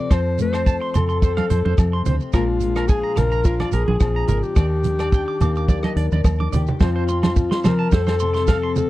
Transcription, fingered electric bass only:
0, 0, Header, 1, 2, 480
1, 0, Start_track
1, 0, Tempo, 557621
1, 97, Time_signature, 4, 2, 24, 8
1, 7659, End_track
2, 0, Start_track
2, 0, Title_t, "Fingered electric bass"
2, 0, Program_c, 0, 33
2, 95, Note_on_c, 0, 41, 90
2, 674, Note_off_c, 0, 41, 0
2, 819, Note_on_c, 0, 41, 88
2, 1204, Note_off_c, 0, 41, 0
2, 1300, Note_on_c, 0, 41, 99
2, 1400, Note_off_c, 0, 41, 0
2, 1427, Note_on_c, 0, 41, 100
2, 1516, Note_off_c, 0, 41, 0
2, 1533, Note_on_c, 0, 41, 92
2, 1727, Note_off_c, 0, 41, 0
2, 1781, Note_on_c, 0, 38, 92
2, 1881, Note_off_c, 0, 38, 0
2, 2014, Note_on_c, 0, 34, 85
2, 2594, Note_off_c, 0, 34, 0
2, 2739, Note_on_c, 0, 34, 93
2, 3124, Note_off_c, 0, 34, 0
2, 3215, Note_on_c, 0, 34, 100
2, 3318, Note_off_c, 0, 34, 0
2, 3346, Note_on_c, 0, 34, 97
2, 3436, Note_off_c, 0, 34, 0
2, 3448, Note_on_c, 0, 34, 92
2, 3645, Note_off_c, 0, 34, 0
2, 3692, Note_on_c, 0, 32, 94
2, 3796, Note_off_c, 0, 32, 0
2, 3929, Note_on_c, 0, 39, 100
2, 4511, Note_off_c, 0, 39, 0
2, 4653, Note_on_c, 0, 39, 95
2, 5041, Note_off_c, 0, 39, 0
2, 5132, Note_on_c, 0, 39, 86
2, 5237, Note_off_c, 0, 39, 0
2, 5269, Note_on_c, 0, 39, 102
2, 5359, Note_off_c, 0, 39, 0
2, 5377, Note_on_c, 0, 39, 97
2, 5571, Note_off_c, 0, 39, 0
2, 5625, Note_on_c, 0, 39, 93
2, 5724, Note_off_c, 0, 39, 0
2, 5860, Note_on_c, 0, 41, 99
2, 6438, Note_off_c, 0, 41, 0
2, 6589, Note_on_c, 0, 53, 105
2, 6778, Note_off_c, 0, 53, 0
2, 6821, Note_on_c, 0, 41, 105
2, 7591, Note_off_c, 0, 41, 0
2, 7659, End_track
0, 0, End_of_file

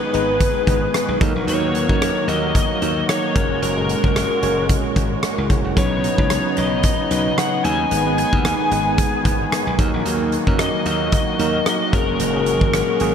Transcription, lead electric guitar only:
0, 0, Header, 1, 2, 480
1, 0, Start_track
1, 0, Tempo, 535714
1, 1327, Time_signature, 4, 2, 24, 8
1, 11780, End_track
2, 0, Start_track
2, 0, Title_t, "Lead electric guitar"
2, 0, Program_c, 0, 29
2, 0, Note_on_c, 0, 71, 82
2, 1051, Note_off_c, 0, 71, 0
2, 1340, Note_on_c, 0, 73, 92
2, 2051, Note_off_c, 0, 73, 0
2, 2055, Note_on_c, 0, 75, 96
2, 2282, Note_off_c, 0, 75, 0
2, 2293, Note_on_c, 0, 75, 96
2, 2736, Note_off_c, 0, 75, 0
2, 2772, Note_on_c, 0, 73, 85
2, 3216, Note_off_c, 0, 73, 0
2, 3252, Note_on_c, 0, 70, 82
2, 4173, Note_off_c, 0, 70, 0
2, 5181, Note_on_c, 0, 73, 82
2, 5894, Note_off_c, 0, 73, 0
2, 5898, Note_on_c, 0, 75, 81
2, 6339, Note_off_c, 0, 75, 0
2, 6376, Note_on_c, 0, 75, 77
2, 6610, Note_on_c, 0, 78, 89
2, 6618, Note_off_c, 0, 75, 0
2, 6849, Note_off_c, 0, 78, 0
2, 6852, Note_on_c, 0, 80, 95
2, 7330, Note_off_c, 0, 80, 0
2, 7341, Note_on_c, 0, 80, 92
2, 8738, Note_off_c, 0, 80, 0
2, 9494, Note_on_c, 0, 75, 100
2, 9714, Note_off_c, 0, 75, 0
2, 9738, Note_on_c, 0, 75, 94
2, 9963, Note_off_c, 0, 75, 0
2, 9974, Note_on_c, 0, 75, 100
2, 10698, Note_on_c, 0, 70, 74
2, 10712, Note_off_c, 0, 75, 0
2, 11780, Note_off_c, 0, 70, 0
2, 11780, End_track
0, 0, End_of_file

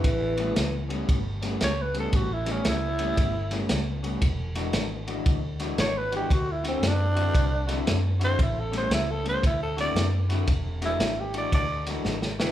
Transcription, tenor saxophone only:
0, 0, Header, 1, 2, 480
1, 0, Start_track
1, 0, Tempo, 522193
1, 36, Time_signature, 4, 2, 24, 8
1, 11505, End_track
2, 0, Start_track
2, 0, Title_t, "Tenor saxophone"
2, 0, Program_c, 0, 66
2, 0, Note_on_c, 0, 52, 102
2, 828, Note_off_c, 0, 52, 0
2, 1504, Note_on_c, 0, 73, 99
2, 1671, Note_on_c, 0, 71, 95
2, 1685, Note_off_c, 0, 73, 0
2, 1810, Note_off_c, 0, 71, 0
2, 1834, Note_on_c, 0, 69, 92
2, 1983, Note_on_c, 0, 66, 96
2, 1997, Note_off_c, 0, 69, 0
2, 2142, Note_on_c, 0, 64, 100
2, 2156, Note_off_c, 0, 66, 0
2, 2314, Note_on_c, 0, 61, 95
2, 2327, Note_off_c, 0, 64, 0
2, 2451, Note_off_c, 0, 61, 0
2, 2473, Note_on_c, 0, 64, 111
2, 3387, Note_off_c, 0, 64, 0
2, 5333, Note_on_c, 0, 73, 109
2, 5496, Note_on_c, 0, 71, 99
2, 5510, Note_off_c, 0, 73, 0
2, 5642, Note_off_c, 0, 71, 0
2, 5663, Note_on_c, 0, 67, 99
2, 5817, Note_on_c, 0, 66, 99
2, 5831, Note_off_c, 0, 67, 0
2, 5987, Note_on_c, 0, 64, 95
2, 6001, Note_off_c, 0, 66, 0
2, 6128, Note_off_c, 0, 64, 0
2, 6143, Note_on_c, 0, 60, 98
2, 6317, Note_on_c, 0, 62, 117
2, 6331, Note_off_c, 0, 60, 0
2, 7228, Note_off_c, 0, 62, 0
2, 7577, Note_on_c, 0, 72, 115
2, 7722, Note_off_c, 0, 72, 0
2, 7746, Note_on_c, 0, 64, 94
2, 7904, Note_on_c, 0, 69, 91
2, 7918, Note_off_c, 0, 64, 0
2, 8045, Note_off_c, 0, 69, 0
2, 8067, Note_on_c, 0, 72, 98
2, 8207, Note_off_c, 0, 72, 0
2, 8218, Note_on_c, 0, 64, 98
2, 8376, Note_on_c, 0, 69, 102
2, 8389, Note_off_c, 0, 64, 0
2, 8521, Note_off_c, 0, 69, 0
2, 8539, Note_on_c, 0, 72, 97
2, 8682, Note_off_c, 0, 72, 0
2, 8698, Note_on_c, 0, 64, 100
2, 8842, Note_off_c, 0, 64, 0
2, 8847, Note_on_c, 0, 69, 92
2, 8996, Note_off_c, 0, 69, 0
2, 9014, Note_on_c, 0, 74, 110
2, 9259, Note_off_c, 0, 74, 0
2, 9977, Note_on_c, 0, 64, 103
2, 10295, Note_on_c, 0, 67, 94
2, 10309, Note_off_c, 0, 64, 0
2, 10440, Note_off_c, 0, 67, 0
2, 10461, Note_on_c, 0, 74, 98
2, 10603, Note_off_c, 0, 74, 0
2, 10613, Note_on_c, 0, 74, 113
2, 10904, Note_off_c, 0, 74, 0
2, 11400, Note_on_c, 0, 52, 99
2, 11505, Note_off_c, 0, 52, 0
2, 11505, End_track
0, 0, End_of_file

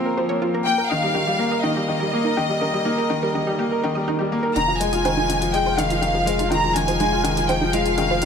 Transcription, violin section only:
0, 0, Header, 1, 2, 480
1, 0, Start_track
1, 0, Tempo, 487805
1, 651, Time_signature, 4, 2, 24, 8
1, 8119, End_track
2, 0, Start_track
2, 0, Title_t, "Violin section"
2, 0, Program_c, 0, 48
2, 0, Note_on_c, 0, 70, 79
2, 132, Note_off_c, 0, 70, 0
2, 643, Note_on_c, 0, 79, 94
2, 870, Note_off_c, 0, 79, 0
2, 883, Note_on_c, 0, 77, 93
2, 1591, Note_on_c, 0, 75, 79
2, 1607, Note_off_c, 0, 77, 0
2, 4001, Note_off_c, 0, 75, 0
2, 4482, Note_on_c, 0, 82, 84
2, 4709, Note_off_c, 0, 82, 0
2, 4735, Note_on_c, 0, 80, 88
2, 5447, Note_on_c, 0, 79, 84
2, 5453, Note_off_c, 0, 80, 0
2, 5689, Note_off_c, 0, 79, 0
2, 5691, Note_on_c, 0, 77, 84
2, 6411, Note_off_c, 0, 77, 0
2, 6411, Note_on_c, 0, 82, 91
2, 6634, Note_off_c, 0, 82, 0
2, 6649, Note_on_c, 0, 80, 93
2, 7366, Note_on_c, 0, 79, 80
2, 7370, Note_off_c, 0, 80, 0
2, 7604, Note_on_c, 0, 77, 86
2, 7608, Note_off_c, 0, 79, 0
2, 8119, Note_off_c, 0, 77, 0
2, 8119, End_track
0, 0, End_of_file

